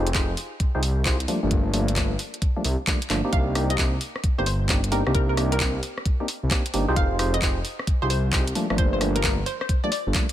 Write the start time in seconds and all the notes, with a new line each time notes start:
Already playing: F1
0.07 closed hi-hat
0.14 D#4 F4 G4 G#4 C5, kick, clap, closed hi-hat
0.37 open hi-hat
0.60 kick, closed hi-hat
0.75 C2 D#4 F4 G4 G#4 C5
0.83 open hi-hat
1.05 D#4 F4 G4 G#4 C5, kick, clap, closed hi-hat
1.20 closed hi-hat
1.28 F3 G3 A3 A#3 D4, open hi-hat
1.43 G1 F3 G3 A3 A#3 D4
1.51 G1, kick, closed hi-hat
1.74 F3 G3 A3 A#3 D4, open hi-hat
1.88 closed hi-hat
1.96 F3 G3 A3 A#3 D4, kick, clap, closed hi-hat
2.19 open hi-hat
2.34 closed hi-hat
2.42 kick, closed hi-hat
2.56 F3 G3 A3 A#3 D4
2.65 C2, open hi-hat
2.87 F3 G3 A3 A#3 D4, kick, clap, closed hi-hat
3.02 closed hi-hat
3.10 G1 F3 G3 A3 A#3 D4, clap, open hi-hat
3.25 A#3 C4 D4 D#4 G4
3.33 C2 F5, kick, closed hi-hat
3.55 A#3 C4 D4 D#4 G4, cross-stick, open hi-hat
3.70 D#5, closed hi-hat
3.78 A#3 C4 D4 D#4 G4, kick, clap, closed hi-hat
4.01 open hi-hat
4.16 cross-stick
4.24 kick, closed hi-hat
4.38 G1 A#3 C4 D4 D#4 G4 C5
4.46 C5, open hi-hat
4.69 A#3 C4 D4 D#4 G4, kick, clap, closed hi-hat
4.84 closed hi-hat
4.92 A#3 C4 D4 D#4 G4 A#4, open hi-hat
5.07 C2 A#3 C4 D4 D#4 G4, cross-stick
5.15 C2 A#4, kick, closed hi-hat
5.29 A#4
5.37 A#3 C4 D4 D#4 G4, cross-stick, open hi-hat
5.52 A#4, closed hi-hat
5.60 A#3 C4 D4 D#4 G4, kick, clap, closed hi-hat
5.83 open hi-hat
5.98 cross-stick
6.06 kick, closed hi-hat
6.20 A#3 C4 D4 D#4 G4
6.28 open hi-hat
6.43 C2
6.51 A#3 C4 D4 D#4 G4, kick, clap, closed hi-hat
6.66 closed hi-hat
6.74 G1 A#3 C4 D4 D#4 G4, open hi-hat
6.88 C2 D#4 F4 G4 G#4 C5
6.96 F1 F5, kick, closed hi-hat
7.19 D#4 F4 G4 G#4 C5, cross-stick, open hi-hat
7.34 D#5, closed hi-hat
7.42 D#4 F4 G4 G#4 C5, kick, clap, closed hi-hat
7.65 open hi-hat
7.79 cross-stick
7.87 kick, closed hi-hat
8.02 C2 D#4 F4 G4 G#4 C5
8.10 C5, open hi-hat
8.33 D#4 F4 G4 G#4 C5, kick, clap, closed hi-hat
8.47 closed hi-hat
8.55 F3 G3 A3 A#3 D4, open hi-hat
8.70 G1 F3 G3 A3 A#3 D4, cross-stick
8.78 G1 C5, kick, closed hi-hat
8.93 C5
9.01 F3 G3 A3 A#3 D4, cross-stick, open hi-hat
9.16 A#4, closed hi-hat
9.24 F3 G3 A3 A#3 D4 A#4, kick, clap, closed hi-hat
9.46 C5, open hi-hat
9.61 C5, cross-stick
9.69 kick, closed hi-hat
9.84 F3 G3 A3 A#3 D4 D5
9.92 D5, open hi-hat
10.07 G1
10.15 F3 G3 A3 A#3 D4, kick, clap, closed hi-hat
10.29 closed hi-hat